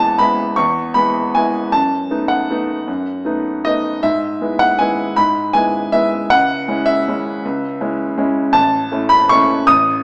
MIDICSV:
0, 0, Header, 1, 2, 480
1, 0, Start_track
1, 0, Key_signature, 4, "major"
1, 0, Tempo, 384369
1, 722, Time_signature, 3, 2, 24, 8
1, 5984, Tempo, 374298
1, 12703, End_track
2, 0, Start_track
2, 0, Title_t, "Grand piano"
2, 0, Program_c, 0, 0
2, 0, Control_c, 0, 64, 127
2, 0, Note_on_c, 0, 40, 69
2, 0, Note_on_c, 0, 56, 46
2, 0, Note_on_c, 0, 59, 47
2, 0, Note_on_c, 0, 64, 51
2, 0, Note_on_c, 0, 80, 99
2, 0, Note_on_c, 0, 81, 103
2, 188, Note_off_c, 0, 56, 0
2, 191, Note_off_c, 0, 59, 0
2, 194, Note_off_c, 0, 64, 0
2, 222, Note_off_c, 0, 81, 0
2, 231, Note_on_c, 0, 83, 97
2, 240, Note_on_c, 0, 56, 51
2, 245, Note_on_c, 0, 59, 47
2, 257, Note_on_c, 0, 64, 54
2, 677, Note_off_c, 0, 56, 0
2, 679, Note_off_c, 0, 59, 0
2, 686, Note_off_c, 0, 64, 0
2, 702, Note_on_c, 0, 85, 96
2, 718, Note_off_c, 0, 40, 0
2, 718, Note_on_c, 0, 40, 67
2, 721, Note_off_c, 0, 83, 0
2, 744, Control_c, 0, 64, 0
2, 749, Note_off_c, 0, 80, 0
2, 944, Control_c, 0, 64, 127
2, 1177, Note_on_c, 0, 83, 94
2, 1182, Note_off_c, 0, 40, 0
2, 1189, Note_off_c, 0, 85, 0
2, 1192, Note_on_c, 0, 56, 51
2, 1202, Note_on_c, 0, 59, 48
2, 1210, Note_on_c, 0, 64, 51
2, 1635, Note_off_c, 0, 56, 0
2, 1640, Note_off_c, 0, 59, 0
2, 1644, Note_off_c, 0, 64, 0
2, 1676, Note_off_c, 0, 83, 0
2, 1681, Note_on_c, 0, 80, 96
2, 1693, Note_on_c, 0, 56, 49
2, 1703, Note_on_c, 0, 64, 55
2, 1705, Note_on_c, 0, 59, 48
2, 2120, Note_off_c, 0, 56, 0
2, 2125, Note_off_c, 0, 64, 0
2, 2127, Note_off_c, 0, 59, 0
2, 2152, Note_on_c, 0, 81, 101
2, 2158, Note_on_c, 0, 42, 65
2, 2162, Note_off_c, 0, 80, 0
2, 2185, Control_c, 0, 64, 0
2, 2375, Control_c, 0, 64, 127
2, 2619, Note_off_c, 0, 42, 0
2, 2630, Note_on_c, 0, 57, 47
2, 2635, Note_on_c, 0, 59, 47
2, 2635, Note_on_c, 0, 63, 49
2, 2851, Note_on_c, 0, 78, 88
2, 2872, Note_off_c, 0, 81, 0
2, 3070, Note_off_c, 0, 57, 0
2, 3073, Note_off_c, 0, 59, 0
2, 3073, Note_off_c, 0, 63, 0
2, 3125, Note_on_c, 0, 57, 52
2, 3128, Note_on_c, 0, 59, 50
2, 3141, Note_on_c, 0, 63, 54
2, 3549, Note_off_c, 0, 57, 0
2, 3550, Note_off_c, 0, 59, 0
2, 3557, Note_off_c, 0, 63, 0
2, 3591, Note_on_c, 0, 42, 64
2, 3617, Control_c, 0, 64, 0
2, 3788, Control_c, 0, 64, 127
2, 4049, Note_off_c, 0, 42, 0
2, 4056, Note_on_c, 0, 57, 47
2, 4066, Note_on_c, 0, 59, 47
2, 4070, Note_on_c, 0, 63, 52
2, 4296, Note_off_c, 0, 78, 0
2, 4505, Note_off_c, 0, 57, 0
2, 4511, Note_off_c, 0, 59, 0
2, 4513, Note_off_c, 0, 63, 0
2, 4554, Note_on_c, 0, 75, 94
2, 4566, Note_on_c, 0, 57, 49
2, 4573, Note_on_c, 0, 59, 51
2, 4580, Note_on_c, 0, 63, 53
2, 4991, Note_off_c, 0, 57, 0
2, 4995, Note_off_c, 0, 59, 0
2, 4999, Note_off_c, 0, 63, 0
2, 5030, Note_on_c, 0, 76, 101
2, 5033, Note_off_c, 0, 75, 0
2, 5037, Note_on_c, 0, 44, 69
2, 5059, Control_c, 0, 64, 0
2, 5246, Control_c, 0, 64, 127
2, 5492, Note_off_c, 0, 44, 0
2, 5508, Note_on_c, 0, 56, 52
2, 5513, Note_on_c, 0, 59, 50
2, 5519, Note_on_c, 0, 64, 53
2, 5734, Note_on_c, 0, 78, 108
2, 5742, Note_off_c, 0, 76, 0
2, 5937, Note_off_c, 0, 56, 0
2, 5940, Note_off_c, 0, 59, 0
2, 5943, Note_off_c, 0, 64, 0
2, 5978, Note_off_c, 0, 78, 0
2, 5978, Note_on_c, 0, 80, 98
2, 5991, Note_on_c, 0, 56, 53
2, 6001, Note_on_c, 0, 64, 56
2, 6002, Note_on_c, 0, 59, 53
2, 6418, Note_off_c, 0, 56, 0
2, 6423, Note_off_c, 0, 59, 0
2, 6423, Note_off_c, 0, 64, 0
2, 6458, Note_off_c, 0, 80, 0
2, 6461, Note_on_c, 0, 83, 105
2, 6475, Note_on_c, 0, 44, 71
2, 6485, Control_c, 0, 64, 0
2, 6664, Control_c, 0, 64, 127
2, 6937, Note_on_c, 0, 80, 104
2, 6938, Note_off_c, 0, 44, 0
2, 6945, Note_off_c, 0, 83, 0
2, 6945, Note_on_c, 0, 56, 51
2, 6954, Note_on_c, 0, 59, 48
2, 6968, Note_on_c, 0, 64, 54
2, 7388, Note_off_c, 0, 56, 0
2, 7393, Note_off_c, 0, 59, 0
2, 7401, Note_off_c, 0, 64, 0
2, 7433, Note_off_c, 0, 80, 0
2, 7436, Note_on_c, 0, 76, 106
2, 7447, Note_on_c, 0, 56, 52
2, 7449, Note_on_c, 0, 59, 52
2, 7454, Note_on_c, 0, 64, 54
2, 7875, Note_off_c, 0, 56, 0
2, 7876, Note_off_c, 0, 59, 0
2, 7878, Note_off_c, 0, 64, 0
2, 7916, Note_off_c, 0, 76, 0
2, 7920, Note_on_c, 0, 78, 119
2, 7938, Control_c, 0, 64, 0
2, 7939, Note_on_c, 0, 37, 69
2, 8126, Control_c, 0, 64, 127
2, 8389, Note_off_c, 0, 37, 0
2, 8405, Note_on_c, 0, 56, 52
2, 8413, Note_on_c, 0, 61, 53
2, 8418, Note_on_c, 0, 64, 61
2, 8631, Note_on_c, 0, 76, 109
2, 8643, Note_off_c, 0, 78, 0
2, 8850, Note_off_c, 0, 56, 0
2, 8854, Note_off_c, 0, 61, 0
2, 8857, Note_off_c, 0, 64, 0
2, 8920, Note_on_c, 0, 61, 53
2, 8921, Note_on_c, 0, 56, 55
2, 8930, Note_on_c, 0, 64, 56
2, 9338, Note_off_c, 0, 56, 0
2, 9338, Note_off_c, 0, 61, 0
2, 9343, Note_off_c, 0, 64, 0
2, 9393, Control_c, 0, 64, 0
2, 9395, Note_on_c, 0, 37, 68
2, 9616, Control_c, 0, 64, 127
2, 9836, Note_off_c, 0, 37, 0
2, 9855, Note_on_c, 0, 61, 56
2, 9856, Note_on_c, 0, 56, 53
2, 9857, Note_on_c, 0, 64, 58
2, 10074, Note_off_c, 0, 76, 0
2, 10284, Note_off_c, 0, 61, 0
2, 10285, Note_off_c, 0, 56, 0
2, 10285, Note_off_c, 0, 64, 0
2, 10323, Note_on_c, 0, 56, 58
2, 10333, Note_on_c, 0, 61, 56
2, 10339, Note_on_c, 0, 64, 64
2, 10750, Note_off_c, 0, 56, 0
2, 10755, Note_off_c, 0, 61, 0
2, 10758, Note_off_c, 0, 64, 0
2, 10776, Note_on_c, 0, 81, 120
2, 10789, Note_on_c, 0, 33, 76
2, 10817, Control_c, 0, 64, 0
2, 11024, Control_c, 0, 64, 127
2, 11253, Note_off_c, 0, 33, 0
2, 11275, Note_on_c, 0, 57, 58
2, 11285, Note_on_c, 0, 61, 51
2, 11290, Note_on_c, 0, 64, 59
2, 11497, Note_on_c, 0, 83, 120
2, 11504, Note_off_c, 0, 81, 0
2, 11712, Note_off_c, 0, 57, 0
2, 11718, Note_off_c, 0, 61, 0
2, 11720, Note_off_c, 0, 64, 0
2, 11750, Note_off_c, 0, 83, 0
2, 11757, Note_on_c, 0, 85, 120
2, 11777, Note_on_c, 0, 57, 57
2, 11777, Note_on_c, 0, 61, 54
2, 11786, Note_on_c, 0, 64, 63
2, 12196, Note_off_c, 0, 57, 0
2, 12196, Note_off_c, 0, 61, 0
2, 12201, Note_off_c, 0, 64, 0
2, 12232, Note_off_c, 0, 85, 0
2, 12238, Note_on_c, 0, 87, 125
2, 12250, Note_on_c, 0, 33, 77
2, 12255, Control_c, 0, 64, 0
2, 12473, Control_c, 0, 64, 127
2, 12699, Note_off_c, 0, 33, 0
2, 12703, Note_off_c, 0, 87, 0
2, 12703, End_track
0, 0, End_of_file